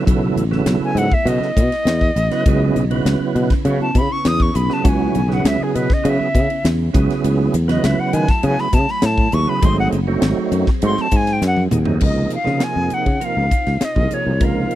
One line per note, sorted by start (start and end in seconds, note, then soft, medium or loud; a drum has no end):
0.00 2.43 A3 medium
0.00 9.60 E4 medium
0.06 0.31 B1 medium
0.06 0.45 C#3 loud
0.06 0.44 F#3 medium
0.06 0.44 B3 medium
0.06 6.91 B3 medium
0.06 0.44 E4 loud
0.06 0.45 A4 loud
0.06 kick loud
0.06 hi-hat pedal medium
0.06 ride medium
0.36 0.60 A1 medium
0.36 hi-hat pedal medium
0.36 ride medium
0.51 1.15 C#3 medium
0.51 1.15 F#3 medium
0.51 1.15 B3 medium
0.51 1.15 E4 medium
0.51 1.15 A4 loud
0.51 snare soft
0.66 0.78 B1 medium
0.66 snare medium
0.66 hi-hat pedal medium
0.66 ride medium
0.81 0.99 G#5 medium
0.81 muted fretless electric bass stroke soft
0.95 1.08 G#2 medium
0.95 1.15 F#5 medium
0.95 hi-hat pedal medium
0.95 ride medium
1.11 1.30 E5 medium
1.11 kick medium
1.25 1.38 B2 loud
1.25 1.52 C#3 medium
1.25 1.52 F#3 medium
1.25 1.52 B3 medium
1.25 1.52 E4 medium
1.25 1.52 A4 medium
1.25 3.07 D#5 medium
1.25 hi-hat pedal medium
1.25 ride medium
1.40 muted fretless electric bass stroke soft
1.40 snare soft
1.56 1.69 B2 medium
1.56 1.64 E4 soft
1.56 1.64 A4 soft
1.56 kick medium
1.56 hi-hat pedal medium
1.56 ride medium
1.72 snare soft
1.72 ride medium
1.85 2.09 E2 medium
1.85 snare loud
1.85 hi-hat pedal medium
1.85 ride medium
2.01 kick medium
2.16 2.28 A1 medium
2.16 2.24 E4 soft
2.16 2.24 A4 soft
2.16 hi-hat pedal medium
2.16 ride medium
2.31 2.44 C#3 medium
2.31 2.44 F#3 medium
2.31 2.44 B3 medium
2.31 2.44 E4 medium
2.31 2.44 B4 medium
2.31 snare soft
2.31 ride medium
2.46 2.70 C#2 medium
2.46 6.91 C#3 medium
2.46 2.85 C#3 loud
2.46 2.85 F#3 loud
2.46 2.85 B3 medium
2.46 6.90 C#4 medium
2.46 2.85 E4 loud
2.46 2.85 G#4 loud
2.46 kick loud
2.46 hi-hat pedal medium
2.46 ride medium
2.76 3.00 B1 medium
2.76 hi-hat pedal medium
2.76 ride medium
2.91 3.54 C#3 medium
2.91 3.54 F#3 medium
2.91 3.54 B3 medium
2.91 3.54 E4 medium
2.91 3.54 B4 medium
2.91 ride medium
3.05 3.18 C#2 medium
3.05 snare loud
3.05 hi-hat pedal medium
3.05 ride medium
3.20 muted fretless electric bass stroke soft
3.35 3.48 B2 medium
3.35 hi-hat pedal medium
3.35 ride medium
3.50 kick medium
3.50 snare soft
3.50 ride soft
3.65 3.77 C#3 loud
3.65 3.91 C#3 medium
3.65 3.92 F#3 medium
3.65 3.91 B3 medium
3.65 3.92 E4 medium
3.65 3.92 F#4 medium
3.65 hi-hat pedal medium
3.65 ride medium
3.80 3.99 A5 medium
3.80 muted fretless electric bass stroke soft
3.95 4.07 C#3 medium
3.95 4.03 E4 soft
3.95 4.03 F#4 soft
3.95 4.14 B5 loud
3.95 kick medium
3.95 hi-hat pedal medium
3.95 ride medium
4.12 4.29 C#6 medium
4.25 4.49 E2 medium
4.25 4.44 D#6 loud
4.25 snare loud
4.25 hi-hat pedal medium
4.25 ride medium
4.40 4.57 C#6 medium
4.40 kick medium
4.54 4.67 B1 medium
4.54 4.62 E4 soft
4.54 4.62 G#4 soft
4.54 4.75 B5 medium
4.54 hi-hat pedal medium
4.54 ride medium
4.69 4.82 C#3 medium
4.69 4.82 F#3 medium
4.69 4.83 B3 medium
4.69 4.83 E4 medium
4.69 4.83 G#4 medium
4.69 snare soft
4.73 4.90 A5 medium
4.83 5.09 C#2 medium
4.83 5.22 C#3 medium
4.83 5.22 F#3 medium
4.83 5.23 B3 medium
4.83 5.23 E4 medium
4.83 5.23 F#4 loud
4.83 kick loud
4.83 hi-hat pedal medium
4.83 ride medium
4.89 5.35 G#5 medium
5.15 5.39 B1 medium
5.15 hi-hat pedal medium
5.15 ride medium
5.28 5.92 C#3 medium
5.28 5.92 F#3 medium
5.28 5.93 B3 medium
5.28 5.92 E4 medium
5.28 5.92 G#4 medium
5.28 snare soft
5.34 5.49 F#5 medium
5.45 5.57 C#2 medium
5.45 5.65 E5 medium
5.45 snare loud
5.45 hi-hat pedal medium
5.45 ride medium
5.61 5.77 G#4 medium
5.61 muted fretless electric bass stroke soft
5.75 5.87 B2 medium
5.75 5.95 B4 medium
5.75 hi-hat pedal medium
5.75 ride medium
5.90 6.10 D#5 medium
5.90 kick medium
5.90 snare soft
6.03 6.29 C#3 medium
6.03 6.17 C#3 loud
6.03 6.30 F#3 medium
6.03 6.29 B3 medium
6.03 6.30 E4 medium
6.03 6.30 G#4 medium
6.03 hi-hat pedal medium
6.03 ride medium
6.09 6.67 E5 medium
6.20 muted fretless electric bass stroke soft
6.34 6.47 C#3 medium
6.34 6.42 E4 soft
6.34 6.42 G#4 soft
6.34 kick medium
6.34 hi-hat pedal medium
6.34 ride medium
6.50 ride medium
6.64 6.88 E2 medium
6.64 snare loud
6.64 hi-hat pedal medium
6.64 ride medium
6.93 7.06 C#2 loud
6.93 7.57 C#3 medium
6.93 7.57 F#3 medium
6.93 11.98 F#3 medium
6.93 9.61 A3 medium
6.93 7.57 B3 medium
6.93 7.57 E4 medium
6.93 7.57 G#4 loud
6.93 kick loud
6.93 hi-hat pedal medium
6.93 ride medium
7.10 snare soft
7.10 ride medium
7.24 7.48 C#2 medium
7.24 hi-hat pedal medium
7.24 ride medium
7.54 7.78 E2 medium
7.54 hi-hat pedal medium
7.54 ride medium
7.68 8.31 C#3 medium
7.68 8.32 F#3 medium
7.68 8.31 B3 medium
7.68 8.31 E4 medium
7.68 8.31 B4 medium
7.68 7.86 D#5 medium
7.68 snare soft
7.68 ride medium
7.84 7.96 C#2 medium
7.84 8.01 E5 medium
7.84 snare loud
7.84 hi-hat pedal medium
7.84 ride medium
7.99 8.15 F#5 medium
7.99 muted fretless electric bass stroke soft
8.13 8.25 D#3 medium
8.13 8.31 G#5 medium
8.13 hi-hat pedal medium
8.13 ride medium
8.28 8.47 A5 medium
8.28 kick medium
8.28 snare soft
8.28 ride medium
8.43 8.68 C#3 medium
8.43 8.55 C#3 loud
8.43 8.69 F#3 medium
8.43 8.69 B3 medium
8.43 8.69 E4 medium
8.43 8.69 G#4 medium
8.43 8.62 G#5 medium
8.43 hi-hat pedal medium
8.43 ride medium
8.58 8.76 B5 loud
8.58 muted fretless electric bass stroke soft
8.58 snare soft
8.73 8.85 C#3 medium
8.73 8.81 E4 soft
8.73 8.81 G#4 soft
8.73 8.92 A5 medium
8.73 kick medium
8.73 hi-hat pedal loud
8.73 ride medium
8.88 9.07 B5 loud
8.88 snare soft
9.02 9.27 A2 medium
9.02 9.35 A5 medium
9.02 snare loud
9.02 hi-hat pedal medium
9.02 ride medium
9.18 kick medium
9.32 9.45 D#2 loud
9.32 9.40 E4 soft
9.32 9.40 G#4 soft
9.32 9.51 C#6 loud
9.32 hi-hat pedal medium
9.32 ride medium
9.46 9.60 C#3 medium
9.46 9.60 F#3 medium
9.46 9.60 B3 medium
9.46 9.60 E4 medium
9.46 9.60 G#4 medium
9.46 9.67 B5 medium
9.61 9.87 G#1 medium
9.61 10.00 F#3 medium
9.61 10.00 A3 medium
9.61 10.00 C4 medium
9.61 12.00 C4 medium
9.61 10.00 D#4 medium
9.61 10.00 G#4 loud
9.61 12.00 G#4 medium
9.61 9.79 C6 medium
9.61 kick loud
9.61 hi-hat pedal medium
9.61 ride medium
9.80 9.88 F#5 medium
9.92 10.16 F#1 medium
9.92 hi-hat pedal medium
9.92 ride medium
10.07 10.70 F#3 medium
10.07 10.71 A3 medium
10.07 10.71 C4 medium
10.07 10.70 D#4 medium
10.07 10.71 F#4 loud
10.22 10.34 G#1 medium
10.22 snare loud
10.22 hi-hat pedal medium
10.22 ride medium
10.38 muted fretless electric bass stroke soft
10.52 10.64 F#2 medium
10.52 hi-hat pedal medium
10.52 ride medium
10.67 kick medium
10.67 snare soft
10.82 10.94 G#2 loud
10.82 11.08 F#3 medium
10.82 11.08 A3 medium
10.82 11.08 C4 medium
10.82 11.08 D#4 medium
10.82 11.08 F#4 medium
10.82 11.03 C6 medium
10.82 hi-hat pedal medium
10.82 ride medium
10.97 muted fretless electric bass stroke soft
10.97 snare soft
11.01 11.18 A5 medium
11.11 11.39 G#2 medium
11.11 11.19 D#4 soft
11.11 11.20 F#4 soft
11.11 kick medium
11.11 hi-hat pedal medium
11.11 ride medium
11.16 11.34 G#5 loud
11.27 snare soft
11.27 ride medium
11.33 11.45 G5 medium
11.41 11.69 F#2 medium
11.41 snare medium
11.41 hi-hat pedal medium
11.47 11.63 F#5 medium
11.56 high tom medium
11.71 11.99 D#2 medium
11.71 11.79 D#4 soft
11.71 11.79 G#4 soft
11.71 hi-hat pedal medium
11.71 mid tom medium
11.85 11.99 F#3 medium
11.85 11.99 A3 medium
11.85 11.99 C4 medium
11.85 11.99 D#4 medium
11.85 11.99 G#4 medium
11.85 floor tom medium
12.00 12.26 C#2 medium
12.00 12.38 C3 medium
12.00 12.39 F3 medium
12.00 12.39 A#3 medium
12.00 12.39 D#4 medium
12.00 12.39 G#4 medium
12.00 kick loud
12.00 crash medium
12.05 14.75 C3 medium
12.05 14.75 C4 medium
12.05 14.75 D#4 medium
12.05 14.75 F4 medium
12.05 12.31 D#5 medium
12.30 hi-hat pedal medium
12.30 ride medium
12.35 12.65 F5 medium
12.44 13.08 C3 medium
12.44 12.58 C#3 medium
12.44 13.08 F3 medium
12.44 13.08 A#3 medium
12.44 13.08 D#4 medium
12.44 13.09 G#4 medium
12.44 snare soft
12.60 12.95 G#5 loud
12.60 snare medium
12.60 hi-hat pedal medium
12.60 ride medium
12.76 12.88 F2 medium
12.90 13.26 F#5 medium
12.90 muted fretless electric bass stroke soft
12.90 hi-hat pedal medium
12.90 ride medium
13.06 13.18 C#3 medium
13.06 kick medium
13.06 ride soft
13.20 13.46 C3 medium
13.20 13.46 F3 medium
13.20 13.46 A#3 medium
13.20 13.46 D#4 medium
13.20 13.47 A#4 medium
13.20 hi-hat pedal medium
13.20 ride medium
13.25 13.86 F5 medium
13.37 13.48 C#2 medium
13.50 13.58 D#4 soft
13.50 13.58 F4 soft
13.50 kick medium
13.50 hi-hat pedal medium
13.50 ride medium
13.67 13.78 C#2 medium
13.67 snare soft
13.67 ride soft
13.81 14.15 D#5 medium
13.81 muted fretless electric bass stroke soft
13.81 snare loud
13.81 hi-hat pedal medium
13.81 ride medium
13.96 14.08 C2 medium
13.96 14.34 C3 medium
13.96 14.34 F3 medium
13.96 14.34 A#3 medium
13.96 14.34 D#4 medium
13.96 14.34 G#4 medium
13.96 kick medium
14.11 14.46 C#5 medium
14.11 muted fretless electric bass stroke soft
14.11 hi-hat pedal medium
14.11 ride medium
14.27 14.40 C2 medium
14.40 14.64 C#2 medium
14.40 14.75 C3 medium
14.40 14.75 F3 medium
14.40 14.75 A#3 medium
14.40 14.75 D#4 medium
14.40 14.75 A#4 medium
14.40 kick loud
14.40 hi-hat pedal medium
14.40 ride medium
14.45 14.75 F5 medium
14.71 hi-hat pedal medium
14.71 ride medium